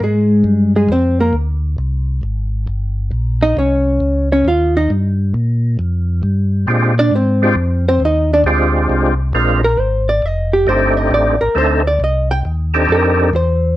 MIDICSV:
0, 0, Header, 1, 4, 480
1, 0, Start_track
1, 0, Tempo, 444444
1, 1447, Time_signature, 4, 2, 24, 8
1, 14867, End_track
2, 0, Start_track
2, 0, Title_t, "Hollow-body jazz guitar"
2, 0, Program_c, 0, 26
2, 33, Note_on_c, 0, 56, 65
2, 39, Note_on_c, 0, 68, 73
2, 782, Note_off_c, 0, 56, 0
2, 782, Note_off_c, 0, 68, 0
2, 822, Note_on_c, 0, 56, 68
2, 824, Note_on_c, 0, 68, 73
2, 967, Note_off_c, 0, 68, 0
2, 968, Note_off_c, 0, 56, 0
2, 990, Note_on_c, 0, 72, 98
2, 998, Note_on_c, 0, 60, 79
2, 1293, Note_off_c, 0, 72, 0
2, 1297, Note_off_c, 0, 60, 0
2, 1297, Note_on_c, 0, 58, 72
2, 1300, Note_on_c, 0, 70, 86
2, 1445, Note_off_c, 0, 70, 0
2, 1447, Note_off_c, 0, 58, 0
2, 3701, Note_on_c, 0, 63, 102
2, 3701, Note_on_c, 0, 75, 104
2, 3848, Note_off_c, 0, 75, 0
2, 3851, Note_off_c, 0, 63, 0
2, 3872, Note_on_c, 0, 73, 83
2, 3878, Note_on_c, 0, 61, 64
2, 4623, Note_off_c, 0, 73, 0
2, 4626, Note_off_c, 0, 61, 0
2, 4671, Note_on_c, 0, 73, 94
2, 4676, Note_on_c, 0, 61, 81
2, 4816, Note_off_c, 0, 73, 0
2, 4818, Note_off_c, 0, 61, 0
2, 4836, Note_on_c, 0, 65, 83
2, 4843, Note_on_c, 0, 77, 88
2, 5140, Note_off_c, 0, 65, 0
2, 5141, Note_off_c, 0, 77, 0
2, 5148, Note_on_c, 0, 63, 85
2, 5149, Note_on_c, 0, 75, 86
2, 5293, Note_off_c, 0, 75, 0
2, 5295, Note_off_c, 0, 63, 0
2, 7551, Note_on_c, 0, 74, 124
2, 7560, Note_on_c, 0, 62, 94
2, 7696, Note_off_c, 0, 74, 0
2, 7700, Note_off_c, 0, 62, 0
2, 7728, Note_on_c, 0, 72, 87
2, 7733, Note_on_c, 0, 60, 70
2, 8470, Note_off_c, 0, 72, 0
2, 8473, Note_off_c, 0, 60, 0
2, 8515, Note_on_c, 0, 72, 108
2, 8519, Note_on_c, 0, 60, 75
2, 8657, Note_off_c, 0, 72, 0
2, 8659, Note_off_c, 0, 60, 0
2, 8692, Note_on_c, 0, 63, 82
2, 8694, Note_on_c, 0, 75, 103
2, 8986, Note_off_c, 0, 75, 0
2, 8987, Note_off_c, 0, 63, 0
2, 8999, Note_on_c, 0, 62, 88
2, 9003, Note_on_c, 0, 74, 109
2, 9086, Note_off_c, 0, 62, 0
2, 9086, Note_off_c, 0, 74, 0
2, 10417, Note_on_c, 0, 70, 100
2, 10583, Note_off_c, 0, 70, 0
2, 10583, Note_on_c, 0, 72, 88
2, 10890, Note_off_c, 0, 72, 0
2, 10898, Note_on_c, 0, 74, 99
2, 11078, Note_off_c, 0, 74, 0
2, 11078, Note_on_c, 0, 75, 90
2, 11378, Note_off_c, 0, 75, 0
2, 11379, Note_on_c, 0, 67, 92
2, 11527, Note_off_c, 0, 67, 0
2, 11545, Note_on_c, 0, 72, 91
2, 11850, Note_off_c, 0, 72, 0
2, 11850, Note_on_c, 0, 75, 110
2, 12002, Note_off_c, 0, 75, 0
2, 12034, Note_on_c, 0, 74, 99
2, 12323, Note_on_c, 0, 70, 95
2, 12334, Note_off_c, 0, 74, 0
2, 12478, Note_off_c, 0, 70, 0
2, 12507, Note_on_c, 0, 72, 87
2, 12810, Note_off_c, 0, 72, 0
2, 12824, Note_on_c, 0, 74, 102
2, 12968, Note_off_c, 0, 74, 0
2, 13001, Note_on_c, 0, 75, 92
2, 13290, Note_off_c, 0, 75, 0
2, 13294, Note_on_c, 0, 79, 127
2, 13386, Note_off_c, 0, 79, 0
2, 13957, Note_on_c, 0, 70, 84
2, 14386, Note_off_c, 0, 70, 0
2, 14429, Note_on_c, 0, 72, 97
2, 14861, Note_off_c, 0, 72, 0
2, 14867, End_track
3, 0, Start_track
3, 0, Title_t, "Tonewheel organ"
3, 0, Program_c, 1, 16
3, 7204, Note_on_c, 1, 60, 50
3, 7209, Note_on_c, 1, 56, 52
3, 7212, Note_on_c, 1, 62, 41
3, 7215, Note_on_c, 1, 65, 49
3, 7217, Note_on_c, 1, 67, 58
3, 7500, Note_off_c, 1, 60, 0
3, 7502, Note_off_c, 1, 56, 0
3, 7504, Note_off_c, 1, 62, 0
3, 7505, Note_off_c, 1, 65, 0
3, 7506, Note_off_c, 1, 67, 0
3, 8015, Note_on_c, 1, 56, 94
3, 8020, Note_on_c, 1, 62, 86
3, 8021, Note_on_c, 1, 60, 78
3, 8022, Note_on_c, 1, 65, 85
3, 8023, Note_on_c, 1, 67, 103
3, 8156, Note_off_c, 1, 56, 0
3, 8159, Note_off_c, 1, 60, 0
3, 8159, Note_off_c, 1, 62, 0
3, 8160, Note_off_c, 1, 65, 0
3, 8160, Note_off_c, 1, 67, 0
3, 9138, Note_on_c, 1, 56, 73
3, 9139, Note_on_c, 1, 60, 55
3, 9141, Note_on_c, 1, 67, 81
3, 9142, Note_on_c, 1, 62, 64
3, 9145, Note_on_c, 1, 65, 63
3, 9873, Note_off_c, 1, 56, 0
3, 9874, Note_off_c, 1, 60, 0
3, 9875, Note_off_c, 1, 62, 0
3, 9875, Note_off_c, 1, 67, 0
3, 9877, Note_off_c, 1, 65, 0
3, 10093, Note_on_c, 1, 56, 66
3, 10094, Note_on_c, 1, 62, 59
3, 10095, Note_on_c, 1, 60, 57
3, 10098, Note_on_c, 1, 65, 61
3, 10098, Note_on_c, 1, 70, 73
3, 10383, Note_off_c, 1, 56, 0
3, 10383, Note_off_c, 1, 62, 0
3, 10384, Note_off_c, 1, 60, 0
3, 10385, Note_off_c, 1, 65, 0
3, 10385, Note_off_c, 1, 70, 0
3, 11523, Note_on_c, 1, 57, 70
3, 11530, Note_on_c, 1, 60, 60
3, 11533, Note_on_c, 1, 62, 64
3, 11533, Note_on_c, 1, 67, 77
3, 11534, Note_on_c, 1, 63, 70
3, 12263, Note_off_c, 1, 57, 0
3, 12267, Note_off_c, 1, 60, 0
3, 12268, Note_off_c, 1, 62, 0
3, 12268, Note_off_c, 1, 63, 0
3, 12268, Note_off_c, 1, 67, 0
3, 12472, Note_on_c, 1, 57, 83
3, 12476, Note_on_c, 1, 60, 65
3, 12481, Note_on_c, 1, 62, 69
3, 12482, Note_on_c, 1, 69, 82
3, 12484, Note_on_c, 1, 63, 63
3, 12770, Note_off_c, 1, 57, 0
3, 12772, Note_off_c, 1, 60, 0
3, 12774, Note_off_c, 1, 62, 0
3, 12775, Note_off_c, 1, 69, 0
3, 12776, Note_off_c, 1, 63, 0
3, 13756, Note_on_c, 1, 69, 78
3, 13761, Note_on_c, 1, 60, 72
3, 13761, Note_on_c, 1, 62, 67
3, 13761, Note_on_c, 1, 63, 65
3, 13763, Note_on_c, 1, 67, 87
3, 14365, Note_off_c, 1, 69, 0
3, 14367, Note_off_c, 1, 60, 0
3, 14367, Note_off_c, 1, 62, 0
3, 14367, Note_off_c, 1, 63, 0
3, 14368, Note_off_c, 1, 67, 0
3, 14867, End_track
4, 0, Start_track
4, 0, Title_t, "Tonewheel organ"
4, 0, Program_c, 2, 16
4, 2, Note_on_c, 2, 44, 82
4, 470, Note_off_c, 2, 44, 0
4, 478, Note_on_c, 2, 43, 82
4, 948, Note_off_c, 2, 43, 0
4, 956, Note_on_c, 2, 41, 81
4, 1428, Note_off_c, 2, 41, 0
4, 1433, Note_on_c, 2, 38, 84
4, 1907, Note_off_c, 2, 38, 0
4, 1924, Note_on_c, 2, 36, 86
4, 2393, Note_off_c, 2, 36, 0
4, 2411, Note_on_c, 2, 32, 74
4, 2877, Note_off_c, 2, 32, 0
4, 2889, Note_on_c, 2, 31, 83
4, 3356, Note_off_c, 2, 31, 0
4, 3365, Note_on_c, 2, 34, 86
4, 3834, Note_off_c, 2, 34, 0
4, 3856, Note_on_c, 2, 36, 85
4, 4320, Note_off_c, 2, 36, 0
4, 4325, Note_on_c, 2, 37, 93
4, 4794, Note_off_c, 2, 37, 0
4, 4805, Note_on_c, 2, 39, 78
4, 5274, Note_off_c, 2, 39, 0
4, 5293, Note_on_c, 2, 43, 94
4, 5759, Note_off_c, 2, 43, 0
4, 5767, Note_on_c, 2, 46, 90
4, 6235, Note_off_c, 2, 46, 0
4, 6253, Note_on_c, 2, 41, 85
4, 6718, Note_off_c, 2, 41, 0
4, 6729, Note_on_c, 2, 43, 99
4, 7196, Note_off_c, 2, 43, 0
4, 7210, Note_on_c, 2, 46, 88
4, 7677, Note_off_c, 2, 46, 0
4, 7686, Note_on_c, 2, 44, 88
4, 8155, Note_off_c, 2, 44, 0
4, 8160, Note_on_c, 2, 41, 99
4, 8631, Note_off_c, 2, 41, 0
4, 8639, Note_on_c, 2, 39, 92
4, 9111, Note_off_c, 2, 39, 0
4, 9115, Note_on_c, 2, 38, 99
4, 9588, Note_off_c, 2, 38, 0
4, 9605, Note_on_c, 2, 36, 88
4, 10073, Note_off_c, 2, 36, 0
4, 10078, Note_on_c, 2, 34, 94
4, 10549, Note_off_c, 2, 34, 0
4, 10556, Note_on_c, 2, 32, 89
4, 11028, Note_off_c, 2, 32, 0
4, 11042, Note_on_c, 2, 29, 95
4, 11510, Note_off_c, 2, 29, 0
4, 11523, Note_on_c, 2, 31, 93
4, 11990, Note_off_c, 2, 31, 0
4, 11999, Note_on_c, 2, 33, 90
4, 12303, Note_off_c, 2, 33, 0
4, 12329, Note_on_c, 2, 33, 39
4, 12407, Note_off_c, 2, 33, 0
4, 12477, Note_on_c, 2, 38, 85
4, 12946, Note_off_c, 2, 38, 0
4, 12958, Note_on_c, 2, 36, 98
4, 13426, Note_off_c, 2, 36, 0
4, 13445, Note_on_c, 2, 39, 85
4, 13909, Note_off_c, 2, 39, 0
4, 13923, Note_on_c, 2, 41, 85
4, 14387, Note_off_c, 2, 41, 0
4, 14402, Note_on_c, 2, 40, 96
4, 14866, Note_off_c, 2, 40, 0
4, 14867, End_track
0, 0, End_of_file